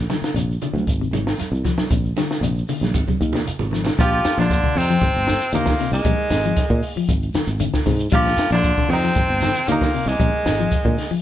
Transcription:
0.09 clean electric guitar D3, snare, closed hi-hat, high conga, low conga, shekere
0.22 muted fingered electric bass stroke, snare, closed hi-hat, shekere
0.34 fingered electric bass A#1, clean electric guitar C3, closed hi-hat, shekere
0.52 shekere
0.62 clean electric guitar D3, closed hi-hat, low conga, shekere
0.73 fingered electric bass D2, high conga, shekere
0.87 fingered electric bass G#1, kick, closed hi-hat, shekere
1.01 clean electric guitar C3, shekere
1.11 fingered electric bass G#1, clean electric guitar D#3, closed hi-hat, high conga, low conga, shekere
1.27 snare, shekere
1.38 snare, closed hi-hat, high conga, shekere
1.52 fingered electric bass C2, shekere
1.64 clean electric guitar F3, kick, snare, closed hi-hat, low conga, shekere
1.78 muted fingered electric bass stroke, snare, high conga, shekere
1.90 fingered electric bass A#1, clean electric guitar C3, kick, closed hi-hat, shekere
2.04 shekere
2.17 clean electric guitar D3, snare, closed hi-hat, high conga, shekere
2.31 snare, shekere
2.41 fingered electric bass A#1, clean electric guitar C3, closed hi-hat, shekere
2.58 shekere
2.69 clean electric guitar D3, open hi-hat, low conga, shekere
2.81 fingered electric bass A#1, snare, high conga, shekere
2.94 fingered electric bass G#1, kick, closed hi-hat, high conga, shekere
3.08 clean electric guitar C3, kick, high conga, shekere
3.21 fingered electric bass D#2, clean electric guitar D#3, kick, closed hi-hat, shekere
3.33 snare, low conga, shekere
3.45 closed hi-hat, low conga, shekere
3.59 fingered electric bass G#1, low conga, shekere
3.71 clean electric guitar F3, snare, low conga, shekere
3.84 snare, low conga, shekere
3.99 fingered electric bass A#1, baritone saxophone F3, clean electric guitar G3, tenor saxophone F4, five-string banjo G4, kick, closed hi-hat, shekere
4.13 closed hi-hat
4.25 snare, closed hi-hat, shekere
4.38 fingered electric bass A#1, baritone saxophone D3, clean electric guitar F3, tenor saxophone D4, five-string banjo F4, snare, shekere
4.50 kick, closed hi-hat, shekere
4.64 clean electric guitar D3, kick, closed hi-hat
4.76 fingered electric bass F2, baritone saxophone C3, tenor saxophone C4, open hi-hat, shekere
4.80 five-string banjo D#4
4.90 clean electric guitar F3, shekere
5.01 fingered electric bass G#1, kick, closed hi-hat, shekere
5.15 fingered electric bass G1
5.27 muted clean electric guitar stroke, snare, closed hi-hat, shekere
5.41 closed hi-hat, shekere
5.52 fingered electric bass D#2, baritone saxophone A#2, clean electric guitar D3, tenor saxophone A#3, five-string banjo D#4, closed hi-hat, shekere
5.66 kick, snare, closed hi-hat
5.79 clean electric guitar C3, snare, open hi-hat, shekere
5.92 fingered electric bass C2, baritone saxophone G#2, tenor saxophone G#3, five-string banjo A#3, shekere
6.05 fingered electric bass A#1, clean electric guitar G3, kick, closed hi-hat, shekere
6.18 muted fingered electric bass stroke
6.30 fingered electric bass G#1, snare, closed hi-hat, shekere
6.44 clean electric guitar F3, closed hi-hat, shekere
6.56 kick, snare, closed hi-hat, shekere
6.70 fingered electric bass A#2, kick, closed hi-hat
6.82 open hi-hat, shekere
6.96 clean electric guitar F3, muted fingered electric bass stroke, shekere
7.09 fingered electric bass G#1, kick, closed hi-hat, shekere
7.23 closed hi-hat
7.34 clean electric guitar D#3, muted fingered electric bass stroke, snare, closed hi-hat, shekere
7.47 fingered electric bass G#1, shekere
7.60 clean electric guitar D3, closed hi-hat, shekere
7.73 kick, snare, closed hi-hat
7.86 fingered electric bass G#2, clean electric guitar C3, kick, snare, open hi-hat, shekere
7.99 closed hi-hat, shekere
8.10 fingered electric bass A#1, baritone saxophone F3, clean electric guitar G3, tenor saxophone F4, kick, closed hi-hat, shekere
8.15 five-string banjo G4
8.26 snare, closed hi-hat
8.37 snare, closed hi-hat, shekere
8.50 fingered electric bass A#1, baritone saxophone D3, clean electric guitar F3, tenor saxophone D4, snare, shekere
8.55 five-string banjo F4
8.63 kick, closed hi-hat, shekere
8.77 clean electric guitar D3, kick, closed hi-hat
8.89 fingered electric bass F2, baritone saxophone C3, tenor saxophone C4, open hi-hat, shekere
8.93 five-string banjo D#4
9.03 clean electric guitar F3, shekere
9.15 fingered electric bass G#1, kick, closed hi-hat, shekere
9.28 fingered electric bass G1
9.41 clean electric guitar D#3, snare, closed hi-hat, shekere
9.55 closed hi-hat, shekere
9.68 fingered electric bass D#2, baritone saxophone A#2, clean electric guitar D3, tenor saxophone A#3, five-string banjo D#4, closed hi-hat, shekere
9.81 kick, snare, closed hi-hat
9.94 clean electric guitar C3, open hi-hat, shekere
10.06 fingered electric bass C2, baritone saxophone G#2, tenor saxophone G#3, shekere
10.11 five-string banjo A#3
10.20 fingered electric bass A#1, clean electric guitar G3, kick, closed hi-hat, shekere
10.34 muted fingered electric bass stroke
10.46 fingered electric bass G#1, snare, closed hi-hat, shekere
10.59 clean electric guitar F3, closed hi-hat, shekere
10.72 kick, closed hi-hat, shekere
10.85 fingered electric bass A#2, clean electric guitar D3, kick, closed hi-hat
10.97 snare, open hi-hat, shekere
11.11 clean electric guitar F3, muted fingered electric bass stroke, shekere

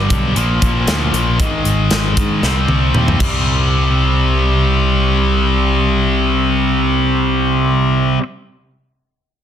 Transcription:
Already playing: distorted electric guitar G2 D3 G3
0.10 picked electric bass B1, kick, closed hi-hat
0.35 picked electric bass A#1, distorted electric guitar A#2 F3 A#3, closed hi-hat
0.62 picked electric bass A#1, kick, closed hi-hat
0.87 picked electric bass D2, snare, closed hi-hat
1.12 picked electric bass A#1, closed hi-hat
1.39 picked electric bass G#1, distorted electric guitar G#2 D#3 G#3, kick, closed hi-hat
1.64 picked electric bass G#1, closed hi-hat
1.91 picked electric bass G#1, snare, closed hi-hat
2.17 picked electric bass G#2, kick, closed hi-hat
2.42 picked electric bass C2, distorted electric guitar C3 G3 C4, snare
2.68 picked electric bass C2, high tom
2.95 picked electric bass D#2, mid tom
3.08 mid tom
3.19 picked electric bass C2, distorted electric guitar C3 G3, kick, crash
3.24 distorted electric guitar C4

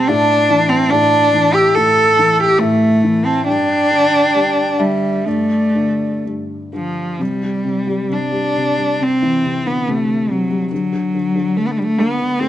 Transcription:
Already playing: felt piano B2 G3, flute A5
0.08 felt piano A2, cello D4, flute A5
0.50 felt piano E3
0.69 cello C4, flute A5
0.90 felt piano A2, cello D4, flute A5
1.34 felt piano E3
1.54 cello G4, flute E6
1.75 felt piano A2, cello A4, flute E6
2.19 felt piano E3
2.38 cello G4, flute E6
2.59 felt piano A2, cello A3, flute E5
3.04 felt piano E3
3.25 cello C4, flute A5
3.45 felt piano G2, cello D4, flute G5
3.91 felt piano D3
4.35 felt piano G3
4.79 felt piano D3, cello G3, flute E5
5.25 felt piano G2, cello A3, flute D5
5.75 felt piano D3
6.25 felt piano G2
6.73 felt piano D3, cello F3
7.19 felt piano C3, cello G3
7.43 felt piano G3
7.65 felt piano C3
7.87 felt piano G3
8.09 felt piano C3, cello D4
8.32 felt piano G3
8.56 felt piano C3
8.77 felt piano G3
8.99 felt piano C3, cello C4
9.22 felt piano E3
9.43 felt piano C3
9.65 felt piano D3, cello B3
9.88 felt piano C3, cello A3
10.30 felt piano C3, cello F#3
10.51 felt piano G3
10.72 felt piano D3, cello F#3
10.93 felt piano D3
11.14 felt piano D3
11.36 felt piano D3
11.57 felt piano D3, cello A3
11.67 cello B3
11.71 cello A3
11.78 felt piano D3, cello G3
11.84 cello A3
11.98 felt piano D3, cello B3
12.20 felt piano D3
12.39 felt piano A3, cello C4

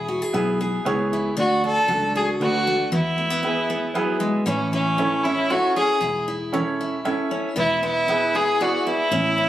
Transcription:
Already playing: fingered electric bass E1, steel-string acoustic guitar E3 E4
0.08 steel-string acoustic guitar F#4
0.22 steel-string acoustic guitar G#4
0.33 fingered electric bass B1, upright piano B3 E4 G#4 B4, steel-string acoustic guitar B3
0.61 steel-string acoustic guitar G#4
0.85 fingered electric bass C#2, steel-string acoustic guitar B2, upright piano B3 E4 G#4 C#5
1.13 steel-string acoustic guitar E4
1.37 fingered electric bass D2, steel-string acoustic guitar D3 D4, fiddle F#4
1.64 steel-string acoustic guitar D4, fiddle A4
1.88 fingered electric bass C#2, steel-string acoustic guitar F#3, upright piano A3 D4 F#4 A4
2.15 steel-string acoustic guitar F#4, fiddle G#4
2.40 fingered electric bass D2, steel-string acoustic guitar A2, upright piano A3 D4 F#4 B4, fiddle F#4
2.67 steel-string acoustic guitar A3
2.92 fingered electric bass E2, steel-string acoustic guitar E3 B3, fiddle E4
3.18 steel-string acoustic guitar A3
3.30 steel-string acoustic guitar B3
3.43 steel-string acoustic guitar B3, upright piano B3 E4 G#4 B4
3.70 steel-string acoustic guitar B3
3.94 steel-string acoustic guitar F#3, upright piano B3 E4 G#4 B4
4.20 steel-string acoustic guitar G#3
4.46 fingered electric bass A1, steel-string acoustic guitar A2 E3 C#4 E4, fiddle C#4
4.73 fiddle C#4, steel-string acoustic guitar E4
4.98 steel-string acoustic guitar E3, upright piano C#4 E4 A4 C#5
5.24 steel-string acoustic guitar C#4, fiddle E4
5.50 steel-string acoustic guitar A2, upright piano C#4 E4 A4 C#5, fiddle F#4
5.76 steel-string acoustic guitar C#4, fiddle G#4
6.01 fingered electric bass E1, steel-string acoustic guitar A2 E4
6.28 steel-string acoustic guitar E4
6.52 steel-string acoustic guitar E3, upright piano C#4 E4 A4 C#5
6.81 steel-string acoustic guitar E4
7.05 steel-string acoustic guitar A2, upright piano C#4 E4 A4 E5
7.31 steel-string acoustic guitar C#4
7.56 fingered electric bass E1, steel-string acoustic guitar E3 B3, fiddle E4
7.83 steel-string acoustic guitar B3, fiddle E4
8.08 steel-string acoustic guitar B3, upright piano B3 E4 G#4 B4
8.35 steel-string acoustic guitar E4, fiddle G#4
8.60 steel-string acoustic guitar B2, upright piano B3 E4 G#4 D5, fiddle F#4
8.86 steel-string acoustic guitar B3, fiddle E4
9.11 fingered electric bass A1, steel-string acoustic guitar A2 C#4
9.38 steel-string acoustic guitar C#4

